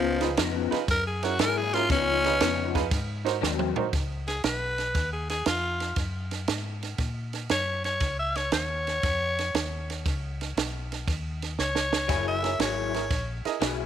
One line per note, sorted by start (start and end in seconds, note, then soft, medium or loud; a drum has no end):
0.00 0.36 C#2 medium
0.00 0.26 C#3 loud
0.00 0.26 F3 medium
0.00 0.37 F3 loud
0.00 0.27 B3 loud
0.00 0.27 D#4 loud
0.21 0.29 D#4 medium
0.21 0.29 F4 medium
0.21 0.29 G#4 medium
0.21 0.30 B4 medium
0.21 snare soft
0.21 ride medium
0.37 0.70 F2 loud
0.37 0.77 C#3 medium
0.37 0.77 F3 medium
0.37 0.77 B3 medium
0.37 0.77 D#4 loud
0.37 snare loud
0.37 ride medium
0.71 0.80 D#4 medium
0.71 0.80 F4 medium
0.71 0.80 G#4 medium
0.71 0.80 B4 loud
0.71 muted fingered electric bass stroke soft
0.71 snare soft
0.71 ride medium
0.88 1.38 F#2 medium
0.88 1.06 A#4 loud
0.88 kick loud
0.88 snare soft
0.88 ride medium
1.07 1.25 G#4 medium
1.23 1.31 C#4 medium
1.23 1.31 E4 medium
1.23 1.40 F#4 medium
1.23 1.32 G#4 medium
1.23 1.31 A#4 medium
1.23 snare soft
1.23 ride medium
1.39 1.89 G#2 loud
1.39 1.78 F#3 medium
1.39 1.79 A#3 medium
1.39 1.79 E4 loud
1.39 1.79 G#4 loud
1.39 1.59 A#4 loud
1.39 snare loud
1.39 ride loud
1.57 1.75 G#4 medium
1.73 1.82 C#4 medium
1.73 1.82 E4 medium
1.73 1.90 F4 loud
1.73 1.83 G#4 medium
1.73 1.83 A#4 medium
1.73 snare soft
1.73 ride medium
1.90 2.39 C#2 loud
1.90 2.29 C#3 loud
1.90 2.30 F3 medium
1.90 2.30 B3 medium
1.90 2.89 C#4 loud
1.90 2.30 D#4 medium
1.90 kick loud
1.90 snare soft
1.90 ride medium
2.24 2.33 D#4 medium
2.24 2.33 F4 medium
2.24 2.33 G#4 medium
2.24 2.33 B4 medium
2.24 snare soft
2.24 ride medium
2.40 2.90 F2 medium
2.40 2.80 C#3 medium
2.40 2.80 F3 medium
2.40 2.80 B3 loud
2.40 2.80 D#4 loud
2.40 snare loud
2.40 ride loud
2.74 2.83 D#4 medium
2.74 2.83 F4 medium
2.74 2.84 G#4 medium
2.74 2.83 B4 loud
2.74 kick medium
2.74 snare soft
2.74 ride medium
2.91 3.41 G#2 loud
2.91 kick loud
2.91 snare soft
2.91 ride medium
3.25 3.34 D#4 medium
3.25 3.34 F#4 medium
3.25 3.34 A#4 medium
3.25 3.34 C5 loud
3.25 snare soft
3.25 ride medium
3.41 3.75 D#2 medium
3.41 3.81 G#2 loud
3.41 3.81 F#3 loud
3.41 3.82 A#3 loud
3.41 3.82 C4 loud
3.41 snare medium
3.59 mid tom medium
3.76 3.85 D#4 medium
3.76 3.85 F#4 medium
3.76 3.85 A#4 medium
3.76 3.85 C5 loud
3.76 muted fingered electric bass stroke soft
3.76 floor tom loud
3.93 4.43 C#2 medium
3.93 kick loud
3.93 snare soft
3.93 ride medium
4.28 4.44 G#4 medium
4.28 snare soft
4.28 ride medium
4.44 4.94 B1 medium
4.44 5.11 B4 medium
4.44 snare loud
4.44 ride medium
4.78 snare soft
4.78 ride medium
4.95 5.45 D#2 medium
4.95 kick loud
4.95 snare soft
4.95 ride medium
5.13 5.29 G#4 medium
5.30 5.46 G#4 medium
5.30 snare soft
5.30 ride medium
5.46 5.96 F2 medium
5.46 5.96 F4 medium
5.46 snare loud
5.46 ride medium
5.80 snare soft
5.80 ride medium
5.96 6.46 F#2 medium
5.96 kick loud
5.96 snare soft
5.96 ride medium
6.31 snare soft
6.31 ride medium
6.48 6.98 G#2 medium
6.48 snare loud
6.48 ride medium
6.83 snare soft
6.83 ride medium
6.98 7.48 A#2 medium
6.98 kick loud
6.98 snare soft
6.98 ride medium
7.33 snare soft
7.33 ride medium
7.49 8.00 F#2 medium
7.49 7.84 C#5 loud
7.49 snare loud
7.49 ride medium
7.84 8.17 C#5 medium
7.84 snare soft
7.84 ride medium
8.00 8.51 C#2 medium
8.00 kick loud
8.00 snare soft
8.00 ride medium
8.19 8.38 E5 medium
8.35 8.52 C#5 medium
8.35 snare soft
8.35 ride medium
8.52 9.02 D#2 medium
8.52 10.01 C#5 loud
8.52 snare loud
8.52 ride medium
8.87 snare soft
8.87 ride medium
9.03 9.53 F2 medium
9.03 kick loud
9.03 snare soft
9.03 ride medium
9.39 snare soft
9.39 ride medium
9.54 10.04 D#2 medium
9.54 snare loud
9.54 ride medium
9.90 snare soft
9.90 ride medium
10.05 10.55 C#2 medium
10.05 kick loud
10.05 snare soft
10.05 ride medium
10.41 snare soft
10.41 ride medium
10.57 11.06 B1 medium
10.57 snare loud
10.57 ride medium
10.92 snare soft
10.92 ride medium
11.08 11.57 D#2 medium
11.08 kick loud
11.08 snare soft
11.08 ride medium
11.42 snare soft
11.42 ride medium
11.59 12.08 C#2 medium
11.59 12.25 C#5 loud
11.59 snare medium
11.75 snare medium
11.93 snare medium
12.08 12.58 F#1 medium
12.08 12.48 F#3 medium
12.08 12.48 A#3 medium
12.08 12.48 E4 medium
12.08 12.48 G#4 medium
12.08 kick loud
12.08 snare soft
12.08 ride medium
12.08 splash medium
12.28 12.60 E5 loud
12.43 12.51 E4 medium
12.43 12.51 G#4 medium
12.43 12.52 A#4 medium
12.43 12.52 C#5 medium
12.43 snare soft
12.43 ride medium
12.59 13.09 G#1 medium
12.59 12.99 F#3 medium
12.59 12.99 A#3 medium
12.59 12.99 E4 medium
12.59 12.99 G#4 medium
12.59 13.27 C#5 medium
12.59 snare loud
12.59 ride medium
12.94 13.02 E4 medium
12.94 13.03 G#4 medium
12.94 13.03 A#4 medium
12.94 13.03 C#5 medium
12.94 snare soft
12.94 ride medium
13.11 13.43 A#1 medium
13.11 kick loud
13.11 snare soft
13.11 ride medium
13.45 13.53 E4 medium
13.45 13.54 G#4 medium
13.45 13.54 A#4 medium
13.45 13.54 D#5 medium
13.45 muted fingered electric bass stroke soft
13.45 snare soft
13.45 ride medium
13.61 13.86 B1 medium
13.61 13.86 F#3 medium
13.61 13.86 A#3 medium
13.61 13.86 E4 medium
13.61 13.86 G#4 medium
13.61 snare loud
13.61 ride medium